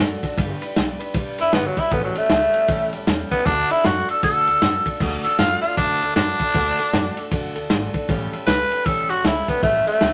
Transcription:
0.00 upright bass F#2, steel-string acoustic guitar A3 D4 F#4 A4
0.23 steel-string acoustic guitar D4 F#4 A4, kick, snare, ride
0.37 upright bass G1, steel-string acoustic guitar G3 D4 G4 B4, kick, ride
0.61 steel-string acoustic guitar D4 G4 B4, ride
0.76 upright bass B1, steel-string acoustic guitar G3 D4 G4 B4, snare, ride
0.99 steel-string acoustic guitar D4 G4 B4, ride
1.14 upright bass B1, steel-string acoustic guitar G3 D4 G4 B4, kick, ride
1.38 upright bass G1, steel-string acoustic guitar D4 G4 B4, tenor saxophone E4, ride
1.53 upright bass G1, steel-string acoustic guitar G3 D4 G4 B4, tenor saxophone B3, snare, ride
1.66 tenor saxophone F#3
1.76 steel-string acoustic guitar D4 G4 B4, tenor saxophone E4, kick, snare, ride
1.91 upright bass A1, steel-string acoustic guitar A2 E3 G3 C#4 G4 A4, tenor saxophone B3, kick, ride
2.04 tenor saxophone F#3
2.14 steel-string acoustic guitar G3 C#4 G4 A4, tenor saxophone A3, ride
2.29 upright bass C#2, steel-string acoustic guitar G3 C#4 G4 A4, snare, ride
2.54 steel-string acoustic guitar G3 C#4 G4 A4, ride
2.67 upright bass C#2, steel-string acoustic guitar A2 E3 G3 C#4 G4 A4, kick, ride
2.93 upright bass A1, steel-string acoustic guitar G3 C#4 G4 A4, ride
3.06 upright bass E2, steel-string acoustic guitar G3 C#4 G4 A4, snare, ride
3.31 steel-string acoustic guitar G3 C#4 G4 A4, tenor saxophone B3, kick, snare, ride
3.46 upright bass D2, steel-string acoustic guitar D3 A3 D4 F#4 A4, tenor saxophone D4, kick, ride
3.70 steel-string acoustic guitar D4 F#4 A4, tenor saxophone E4, muted upright bass stroke, ride
3.84 upright bass F#2, steel-string acoustic guitar A3 F#4 A4, tenor saxophone F#4, snare, ride
4.08 steel-string acoustic guitar D4 F#4 A4, tenor saxophone A4, muted upright bass stroke, ride
4.23 steel-string acoustic guitar D3 A3 D4 F#4 A4, tenor saxophone A4, kick, ride
4.47 upright bass D2, steel-string acoustic guitar D4 F#4 A4, ride
4.61 upright bass F#2, steel-string acoustic guitar A3 D4 F#4 A4, snare, ride
4.86 steel-string acoustic guitar D4 F#4 A4, kick, ride
5.00 upright bass D2, steel-string acoustic guitar D3 A3 D4 F#4 A4, kick, crash
5.24 steel-string acoustic guitar D4 F#4 A4, tenor saxophone A4, muted upright bass stroke, ride
5.38 upright bass F#2, steel-string acoustic guitar A3 D4 F#4 A4, tenor saxophone F4, snare, ride
5.62 steel-string acoustic guitar D4 F#4 A4, tenor saxophone F4, muted upright bass stroke, ride
5.76 upright bass F#2, steel-string acoustic guitar D3 A3 D4 F#4 A4, tenor saxophone D4, kick, ride
6.01 upright bass D2, steel-string acoustic guitar D4 F#4 A4, ride
6.16 upright bass F#2, steel-string acoustic guitar A3 D4 F#4 A4, tenor saxophone D4, snare, ride
6.40 steel-string acoustic guitar D4 F#4 A4, kick, ride
6.54 upright bass D2, steel-string acoustic guitar D3 A3 D4 F#4 A4, kick, ride
6.79 steel-string acoustic guitar D4 F#4 A4, ride
6.93 upright bass F#2, steel-string acoustic guitar A3 D4 F#4 A4, snare, ride
7.17 steel-string acoustic guitar D4 F#4 A4, muted upright bass stroke, ride
7.31 upright bass F#2, steel-string acoustic guitar D3 A3 D4 F#4 A4, kick, ride
7.55 upright bass D2, steel-string acoustic guitar D4 F#4 A4, ride
7.70 upright bass G#1, steel-string acoustic guitar A3 D4 F#4 A4, snare, ride
7.93 steel-string acoustic guitar D4 F#4 A4, muted upright bass stroke, kick, ride
8.08 upright bass A1, steel-string acoustic guitar A2 E3 G3 C#4 G4 A4, kick, ride
8.32 steel-string acoustic guitar G3 C#4 G4 A4, muted upright bass stroke, ride
8.47 upright bass C#2, steel-string acoustic guitar G3 G4 A4, tenor saxophone B4, snare, ride
8.71 steel-string acoustic guitar C#4 G4 A4, muted upright bass stroke, ride
8.75 steel-string acoustic guitar G3
8.86 upright bass C#2, steel-string acoustic guitar A2 E3 G3 C#4 G4 A4, tenor saxophone A4, kick, ride
9.09 upright bass A1, steel-string acoustic guitar G3 C#4 G4 A4, tenor saxophone F#4, ride
9.24 upright bass C#2, steel-string acoustic guitar G3 C#4 G4 A4, tenor saxophone E4, snare, ride
9.48 steel-string acoustic guitar G3 C#4 G4 A4, tenor saxophone B3, kick, snare, ride
9.63 upright bass A1, steel-string acoustic guitar A2 E3 G3 C#4 G4 A4, tenor saxophone A3, kick, ride
9.86 steel-string acoustic guitar G3 C#4 G4 A4, tenor saxophone A3, muted upright bass stroke, ride
10.01 upright bass C#2, steel-string acoustic guitar G3 C#4 G4 A4, snare, ride

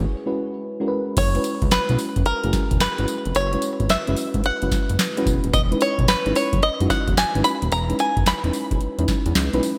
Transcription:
Already playing: fm electric piano G#3 C#4 E4 F#4 G#4 B4, five-string banjo C#5
0.26 fm electric piano G#3 C#4 E4 F#4 B4
0.80 fm electric piano G#3 C#4 E4 F#4 A#4
0.88 fm electric piano B4
1.17 analog synth bass F#1, five-string banjo C#5, kick, closed hi-hat, crash, tambourine
1.35 fm electric piano G#3 C#4 E4 F#4 B4, closed hi-hat
1.44 closed hi-hat, tambourine
1.62 analog synth bass C#2, kick, closed hi-hat
1.71 analog synth bass B1, five-string banjo B4, snare, clap, closed hi-hat, tambourine
1.89 analog synth bass B1, fm electric piano G#3 C#4 E4 F#4 B4, closed hi-hat
1.99 open hi-hat, tambourine
2.16 analog synth bass F#1, kick, closed hi-hat
2.26 five-string banjo A#4, closed hi-hat
2.44 analog synth bass F#1, fm electric piano G#3 C#4 E4 F#4 G#4, closed hi-hat
2.53 kick, snare, closed hi-hat, tambourine
2.71 analog synth bass E1, kick, closed hi-hat
2.80 analog synth bass G#1, five-string banjo B4, snare, clap, closed hi-hat, tambourine
2.98 analog synth bass G#1, fm electric piano G#3 C#4 E4 F#4 B4, closed hi-hat
3.08 closed hi-hat, tambourine
3.25 analog synth bass F1, closed hi-hat
3.35 analog synth bass F#1, five-string banjo C#5, closed hi-hat, tambourine
3.53 fm electric piano G#3 C#4 E4 F#4 B4, closed hi-hat
3.62 closed hi-hat, tambourine
3.80 analog synth bass G#1, kick, closed hi-hat
3.89 analog synth bass F#1, five-string banjo E5, snare, clap, closed hi-hat, tambourine
4.07 analog synth bass F#1, fm electric piano G#3 C#4 E4 F#4 B4, closed hi-hat
4.17 open hi-hat, tambourine
4.34 analog synth bass G#1, kick, closed hi-hat
4.44 five-string banjo F#5, closed hi-hat
4.62 analog synth bass F#1, fm electric piano G#3 C#4 E4 F#4 B4, closed hi-hat
4.71 kick, snare, closed hi-hat, tambourine
4.89 analog synth bass F#1, closed hi-hat
4.99 snare, clap, closed hi-hat, tambourine
5.17 fm electric piano G#3 C#4 E4 F#4 B4, closed hi-hat
5.26 analog synth bass E1, kick, closed hi-hat, tambourine
5.44 analog synth bass D#1, closed hi-hat
5.53 analog synth bass E1, five-string banjo D#5, kick, closed hi-hat, tambourine
5.71 fm electric piano G#3 C#4 D#4 E4 B4, closed hi-hat
5.81 five-string banjo C#5, closed hi-hat, tambourine
5.98 analog synth bass B1, kick, closed hi-hat
6.08 analog synth bass G#1, five-string banjo B4, snare, clap, closed hi-hat, tambourine
6.26 analog synth bass G#1, fm electric piano G#3 C#4 D#4 E4 B4, closed hi-hat
6.35 five-string banjo C#5, open hi-hat, tambourine
6.53 analog synth bass F#1, kick, closed hi-hat
6.63 five-string banjo D#5, closed hi-hat
6.80 analog synth bass F#1, fm electric piano G#3 C#4 D#4 E4 F#4, closed hi-hat
6.90 five-string banjo F#5, kick, snare, closed hi-hat, tambourine
7.08 analog synth bass E1, kick, closed hi-hat
7.17 analog synth bass G#1, five-string banjo G#5, snare, clap, closed hi-hat, tambourine
7.35 analog synth bass G#1, fm electric piano G#3 C#4 D#4 E4 B4, closed hi-hat
7.44 five-string banjo B5, closed hi-hat, tambourine
7.62 analog synth bass D#1, closed hi-hat
7.72 analog synth bass E1, five-string banjo A#5, closed hi-hat, tambourine
7.89 fm electric piano G#3 C#4 D#4 E4 B4, closed hi-hat
7.99 five-string banjo G#5, closed hi-hat, tambourine
8.17 analog synth bass F#1, kick, closed hi-hat
8.26 analog synth bass E1, five-string banjo B5, snare, clap, closed hi-hat, tambourine
8.44 analog synth bass E1, fm electric piano G#3 C#4 D#4 E4 B4, closed hi-hat
8.53 open hi-hat, tambourine
8.71 analog synth bass E1, kick, closed hi-hat
8.81 closed hi-hat
8.99 analog synth bass E2, fm electric piano G#3 C#4 D#4 E4 B4, closed hi-hat
9.08 kick, snare, closed hi-hat, tambourine
9.26 analog synth bass E2, closed hi-hat
9.35 analog synth bass C#2, snare, clap, closed hi-hat, tambourine
9.53 analog synth bass B1, fm electric piano G#3 C#4 D#4 E4 B4, closed hi-hat
9.63 open hi-hat, tambourine

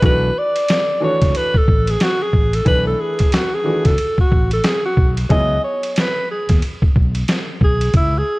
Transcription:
0.02 fretless electric bass B1, upright piano E3 A3 D4 F#4, alto saxophone B4, kick, ride
0.38 alto saxophone D5
0.56 ride
0.68 snare, hi-hat pedal, ride
1.00 upright piano E3 A3 D4 F#4, alto saxophone C#5
1.21 fretless electric bass C#2, kick, snare, ride
1.35 alto saxophone B4, ride
1.54 alto saxophone A4, kick
1.68 fretless electric bass A1, kick
1.87 alto saxophone G#4, ride
2.00 alto saxophone F#4, snare, hi-hat pedal, ride
2.22 alto saxophone G#4
2.33 fretless electric bass A1, kick
2.53 alto saxophone A4, ride
2.65 fretless electric bass B1, upright piano E3 A3 D4 B4, alto saxophone B4, kick, ride
2.87 alto saxophone A4
3.01 alto saxophone G#4
3.19 kick, ride
3.32 alto saxophone F#4, snare, hi-hat pedal, ride
3.54 alto saxophone G#4
3.64 upright piano E3 A3 D4 F#4
3.85 fretless electric bass C#2, alto saxophone A4, kick, snare, ride
3.98 ride
4.18 alto saxophone F#4, kick
4.32 fretless electric bass A1, kick
4.51 alto saxophone A4, ride
4.64 alto saxophone G#4, snare, hi-hat pedal, ride
4.85 alto saxophone F#4
4.97 fretless electric bass B1, kick
5.17 ride
5.29 fretless electric bass C#2, upright piano F#3 B3 E4 G#4, alto saxophone D#5, kick, ride
5.64 alto saxophone C#5
5.83 ride
5.92 alto saxophone C#5, hi-hat pedal, ride
5.98 alto saxophone B4, snare
6.31 alto saxophone G#4
6.49 fretless electric bass D#2, kick, snare, ride
6.62 ride
6.82 kick
6.96 fretless electric bass B1, kick
7.15 ride
7.28 snare, hi-hat pedal, ride
7.61 fretless electric bass B1, alto saxophone G#4, kick
7.81 ride
7.94 fretless electric bass C#2, alto saxophone E4, kick, ride
8.18 alto saxophone G#4

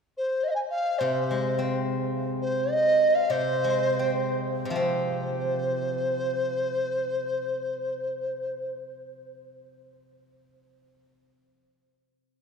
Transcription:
0.17 dizi C5
0.43 dizi D#5
0.47 dizi D#5 F5
0.55 dizi G#5
0.70 dizi F5
0.98 guzheng C3, dizi C5
1.31 guzheng G#3
1.59 guzheng C4
2.41 dizi C5
2.71 dizi D#5
3.14 dizi F5
3.30 guzheng C3, dizi C5
3.64 guzheng G#3
3.99 guzheng C4
4.65 guzheng C3
4.70 guzheng F3
4.76 guzheng C4, dizi C5

